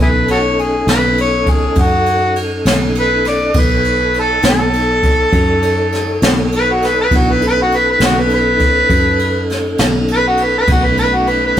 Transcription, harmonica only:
0, 0, Header, 1, 2, 480
1, 0, Start_track
1, 0, Tempo, 594648
1, 2863, Time_signature, 12, 3, 24, 8
1, 9362, End_track
2, 0, Start_track
2, 0, Title_t, "Harmonica"
2, 0, Program_c, 0, 22
2, 17, Note_on_c, 0, 64, 52
2, 17, Note_on_c, 0, 68, 52
2, 17, Note_on_c, 0, 71, 75
2, 66, Note_off_c, 0, 64, 0
2, 70, Note_off_c, 0, 68, 0
2, 232, Note_off_c, 0, 71, 0
2, 252, Note_on_c, 0, 66, 57
2, 252, Note_on_c, 0, 69, 57
2, 252, Note_on_c, 0, 73, 81
2, 302, Note_off_c, 0, 69, 0
2, 322, Note_off_c, 0, 66, 0
2, 495, Note_on_c, 0, 68, 71
2, 507, Note_off_c, 0, 73, 0
2, 712, Note_off_c, 0, 68, 0
2, 729, Note_on_c, 0, 71, 86
2, 949, Note_off_c, 0, 71, 0
2, 978, Note_on_c, 0, 73, 80
2, 1220, Note_on_c, 0, 68, 84
2, 1232, Note_off_c, 0, 73, 0
2, 1462, Note_on_c, 0, 66, 95
2, 1475, Note_off_c, 0, 68, 0
2, 1909, Note_off_c, 0, 66, 0
2, 2419, Note_on_c, 0, 71, 84
2, 2634, Note_off_c, 0, 71, 0
2, 2646, Note_on_c, 0, 74, 75
2, 2901, Note_on_c, 0, 71, 76
2, 2913, Note_off_c, 0, 74, 0
2, 3348, Note_off_c, 0, 71, 0
2, 3386, Note_on_c, 0, 69, 77
2, 3598, Note_off_c, 0, 69, 0
2, 3630, Note_on_c, 0, 69, 89
2, 5014, Note_off_c, 0, 69, 0
2, 5301, Note_on_c, 0, 71, 89
2, 5424, Note_on_c, 0, 66, 80
2, 5436, Note_off_c, 0, 71, 0
2, 5545, Note_on_c, 0, 71, 77
2, 5557, Note_off_c, 0, 66, 0
2, 5637, Note_off_c, 0, 71, 0
2, 5658, Note_on_c, 0, 71, 94
2, 5788, Note_on_c, 0, 66, 84
2, 5800, Note_off_c, 0, 71, 0
2, 5908, Note_on_c, 0, 71, 79
2, 5920, Note_off_c, 0, 66, 0
2, 5998, Note_off_c, 0, 71, 0
2, 6037, Note_on_c, 0, 71, 100
2, 6123, Note_off_c, 0, 71, 0
2, 6152, Note_on_c, 0, 66, 91
2, 6263, Note_on_c, 0, 71, 83
2, 6275, Note_off_c, 0, 66, 0
2, 6355, Note_off_c, 0, 71, 0
2, 6384, Note_on_c, 0, 71, 77
2, 6476, Note_off_c, 0, 71, 0
2, 6499, Note_on_c, 0, 66, 95
2, 6622, Note_on_c, 0, 71, 74
2, 6634, Note_off_c, 0, 66, 0
2, 6715, Note_off_c, 0, 71, 0
2, 6734, Note_on_c, 0, 71, 101
2, 7648, Note_off_c, 0, 71, 0
2, 8180, Note_on_c, 0, 71, 109
2, 8273, Note_off_c, 0, 71, 0
2, 8296, Note_on_c, 0, 66, 81
2, 8425, Note_on_c, 0, 71, 69
2, 8437, Note_off_c, 0, 66, 0
2, 8515, Note_off_c, 0, 71, 0
2, 8541, Note_on_c, 0, 71, 94
2, 8633, Note_off_c, 0, 71, 0
2, 8652, Note_on_c, 0, 66, 87
2, 8761, Note_on_c, 0, 71, 76
2, 8773, Note_off_c, 0, 66, 0
2, 8862, Note_off_c, 0, 71, 0
2, 8872, Note_on_c, 0, 71, 100
2, 8998, Note_on_c, 0, 66, 89
2, 9010, Note_off_c, 0, 71, 0
2, 9114, Note_on_c, 0, 71, 88
2, 9126, Note_off_c, 0, 66, 0
2, 9218, Note_off_c, 0, 71, 0
2, 9254, Note_on_c, 0, 71, 84
2, 9349, Note_off_c, 0, 71, 0
2, 9362, End_track
0, 0, End_of_file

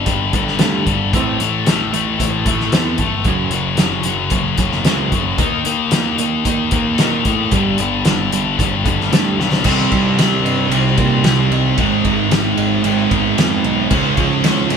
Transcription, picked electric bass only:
0, 0, Header, 1, 2, 480
1, 0, Start_track
1, 0, Tempo, 532387
1, 1027, Time_signature, 4, 2, 24, 8
1, 13316, End_track
2, 0, Start_track
2, 0, Title_t, "Picked electric bass"
2, 0, Program_c, 0, 34
2, 59, Note_on_c, 0, 31, 89
2, 290, Note_off_c, 0, 31, 0
2, 296, Note_on_c, 0, 31, 86
2, 533, Note_off_c, 0, 31, 0
2, 558, Note_on_c, 0, 38, 87
2, 776, Note_off_c, 0, 38, 0
2, 781, Note_on_c, 0, 31, 89
2, 1016, Note_off_c, 0, 31, 0
2, 1024, Note_on_c, 0, 33, 90
2, 1258, Note_off_c, 0, 33, 0
2, 1263, Note_on_c, 0, 33, 84
2, 1497, Note_off_c, 0, 33, 0
2, 1506, Note_on_c, 0, 33, 100
2, 1970, Note_off_c, 0, 33, 0
2, 1985, Note_on_c, 0, 33, 81
2, 2209, Note_off_c, 0, 33, 0
2, 2214, Note_on_c, 0, 33, 89
2, 2450, Note_off_c, 0, 33, 0
2, 2455, Note_on_c, 0, 40, 102
2, 2686, Note_off_c, 0, 40, 0
2, 2692, Note_on_c, 0, 31, 91
2, 2922, Note_off_c, 0, 31, 0
2, 2928, Note_on_c, 0, 30, 95
2, 3159, Note_off_c, 0, 30, 0
2, 3165, Note_on_c, 0, 30, 77
2, 3408, Note_off_c, 0, 30, 0
2, 3413, Note_on_c, 0, 30, 90
2, 3884, Note_off_c, 0, 30, 0
2, 3890, Note_on_c, 0, 30, 94
2, 4123, Note_off_c, 0, 30, 0
2, 4129, Note_on_c, 0, 30, 87
2, 4369, Note_off_c, 0, 30, 0
2, 4377, Note_on_c, 0, 37, 96
2, 4610, Note_off_c, 0, 37, 0
2, 4616, Note_on_c, 0, 30, 88
2, 4846, Note_off_c, 0, 30, 0
2, 4852, Note_on_c, 0, 39, 91
2, 5091, Note_off_c, 0, 39, 0
2, 5101, Note_on_c, 0, 39, 90
2, 5332, Note_off_c, 0, 39, 0
2, 5337, Note_on_c, 0, 39, 99
2, 5806, Note_off_c, 0, 39, 0
2, 5816, Note_on_c, 0, 39, 80
2, 6050, Note_off_c, 0, 39, 0
2, 6056, Note_on_c, 0, 39, 92
2, 6293, Note_off_c, 0, 39, 0
2, 6304, Note_on_c, 0, 46, 86
2, 6535, Note_off_c, 0, 46, 0
2, 6540, Note_on_c, 0, 45, 100
2, 6775, Note_off_c, 0, 45, 0
2, 6785, Note_on_c, 0, 31, 93
2, 7018, Note_off_c, 0, 31, 0
2, 7023, Note_on_c, 0, 31, 84
2, 7253, Note_off_c, 0, 31, 0
2, 7258, Note_on_c, 0, 31, 91
2, 7726, Note_off_c, 0, 31, 0
2, 7741, Note_on_c, 0, 31, 89
2, 7976, Note_off_c, 0, 31, 0
2, 7985, Note_on_c, 0, 31, 96
2, 8210, Note_off_c, 0, 31, 0
2, 8216, Note_on_c, 0, 38, 89
2, 8453, Note_off_c, 0, 38, 0
2, 8466, Note_on_c, 0, 35, 96
2, 8696, Note_off_c, 0, 35, 0
2, 8702, Note_on_c, 0, 36, 93
2, 8900, Note_off_c, 0, 36, 0
2, 8945, Note_on_c, 0, 36, 78
2, 9142, Note_off_c, 0, 36, 0
2, 9173, Note_on_c, 0, 36, 82
2, 9375, Note_off_c, 0, 36, 0
2, 9409, Note_on_c, 0, 43, 90
2, 9612, Note_off_c, 0, 43, 0
2, 9642, Note_on_c, 0, 36, 83
2, 9848, Note_off_c, 0, 36, 0
2, 9899, Note_on_c, 0, 46, 85
2, 10099, Note_off_c, 0, 46, 0
2, 10134, Note_on_c, 0, 36, 100
2, 10335, Note_off_c, 0, 36, 0
2, 10368, Note_on_c, 0, 36, 88
2, 10572, Note_off_c, 0, 36, 0
2, 10625, Note_on_c, 0, 32, 89
2, 10822, Note_off_c, 0, 32, 0
2, 10863, Note_on_c, 0, 32, 85
2, 11060, Note_off_c, 0, 32, 0
2, 11083, Note_on_c, 0, 32, 94
2, 11288, Note_off_c, 0, 32, 0
2, 11334, Note_on_c, 0, 32, 83
2, 11535, Note_off_c, 0, 32, 0
2, 11572, Note_on_c, 0, 32, 89
2, 11774, Note_off_c, 0, 32, 0
2, 11823, Note_on_c, 0, 32, 94
2, 12020, Note_off_c, 0, 32, 0
2, 12063, Note_on_c, 0, 41, 92
2, 12260, Note_off_c, 0, 41, 0
2, 12296, Note_on_c, 0, 35, 85
2, 12496, Note_off_c, 0, 35, 0
2, 12540, Note_on_c, 0, 37, 100
2, 12738, Note_off_c, 0, 37, 0
2, 12781, Note_on_c, 0, 37, 81
2, 12979, Note_off_c, 0, 37, 0
2, 13019, Note_on_c, 0, 37, 97
2, 13217, Note_off_c, 0, 37, 0
2, 13264, Note_on_c, 0, 44, 91
2, 13316, Note_off_c, 0, 44, 0
2, 13316, End_track
0, 0, End_of_file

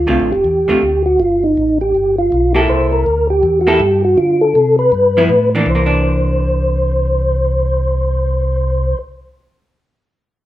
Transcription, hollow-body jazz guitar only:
0, 0, Header, 1, 2, 480
1, 0, Start_track
1, 0, Tempo, 372671
1, 1539, Time_signature, 4, 2, 24, 8
1, 13467, End_track
2, 0, Start_track
2, 0, Title_t, "Hollow-body jazz guitar"
2, 0, Program_c, 0, 26
2, 90, Note_on_c, 0, 50, 59
2, 96, Note_on_c, 0, 57, 55
2, 101, Note_on_c, 0, 60, 62
2, 101, Note_on_c, 0, 65, 62
2, 371, Note_off_c, 0, 50, 0
2, 375, Note_off_c, 0, 57, 0
2, 377, Note_off_c, 0, 60, 0
2, 377, Note_off_c, 0, 65, 0
2, 874, Note_on_c, 0, 50, 62
2, 885, Note_on_c, 0, 57, 60
2, 890, Note_on_c, 0, 60, 59
2, 899, Note_on_c, 0, 65, 60
2, 1035, Note_off_c, 0, 50, 0
2, 1041, Note_off_c, 0, 57, 0
2, 1043, Note_off_c, 0, 60, 0
2, 1048, Note_off_c, 0, 65, 0
2, 3279, Note_on_c, 0, 58, 69
2, 3293, Note_on_c, 0, 64, 73
2, 3297, Note_on_c, 0, 69, 64
2, 3901, Note_off_c, 0, 58, 0
2, 3908, Note_off_c, 0, 64, 0
2, 3910, Note_off_c, 0, 69, 0
2, 4724, Note_on_c, 0, 58, 73
2, 4732, Note_on_c, 0, 64, 85
2, 4742, Note_on_c, 0, 69, 77
2, 4881, Note_off_c, 0, 58, 0
2, 4885, Note_off_c, 0, 64, 0
2, 4890, Note_off_c, 0, 69, 0
2, 6658, Note_on_c, 0, 53, 65
2, 6669, Note_on_c, 0, 59, 65
2, 6670, Note_on_c, 0, 64, 81
2, 6808, Note_off_c, 0, 53, 0
2, 6814, Note_off_c, 0, 59, 0
2, 6814, Note_off_c, 0, 64, 0
2, 7145, Note_on_c, 0, 52, 68
2, 7155, Note_on_c, 0, 62, 69
2, 7156, Note_on_c, 0, 58, 68
2, 7209, Note_off_c, 0, 52, 0
2, 7225, Note_on_c, 0, 52, 54
2, 7297, Note_off_c, 0, 58, 0
2, 7297, Note_off_c, 0, 62, 0
2, 7407, Note_on_c, 0, 58, 69
2, 7550, Note_on_c, 0, 62, 65
2, 11508, Note_off_c, 0, 52, 0
2, 11690, Note_off_c, 0, 58, 0
2, 11833, Note_off_c, 0, 62, 0
2, 13467, End_track
0, 0, End_of_file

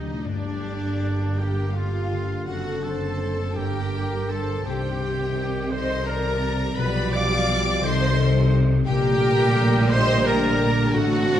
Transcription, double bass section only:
0, 0, Header, 1, 2, 480
1, 0, Start_track
1, 0, Key_signature, -2, "minor"
1, 0, Tempo, 758534
1, 164, Time_signature, 6, 3, 24, 8
1, 1115, Tempo, 725514
1, 3035, Tempo, 703400
1, 5435, Tempo, 691244
1, 7670, End_track
2, 0, Start_track
2, 0, Title_t, "Double bass section"
2, 0, Program_c, 0, 48
2, 168, Note_on_c, 0, 31, 57
2, 1569, Note_off_c, 0, 31, 0
2, 1590, Note_on_c, 0, 30, 59
2, 2296, Note_off_c, 0, 30, 0
2, 2311, Note_on_c, 0, 31, 68
2, 3035, Note_off_c, 0, 31, 0
2, 3039, Note_on_c, 0, 36, 63
2, 4452, Note_off_c, 0, 36, 0
2, 4485, Note_on_c, 0, 35, 82
2, 5186, Note_off_c, 0, 35, 0
2, 5198, Note_on_c, 0, 36, 91
2, 5898, Note_off_c, 0, 36, 0
2, 5910, Note_on_c, 0, 34, 94
2, 7324, Note_off_c, 0, 34, 0
2, 7360, Note_on_c, 0, 33, 90
2, 7670, Note_off_c, 0, 33, 0
2, 7670, End_track
0, 0, End_of_file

